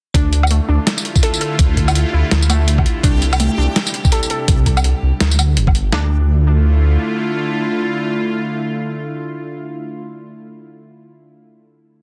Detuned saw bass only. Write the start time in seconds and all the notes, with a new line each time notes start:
0.14 D2
0.69 D2
1.59 D2
2.13 D2
2.32 D2
3.04 C2
3.58 C2
4.48 C2
5.03 C2
5.21 D2
5.57 G1
5.93 D2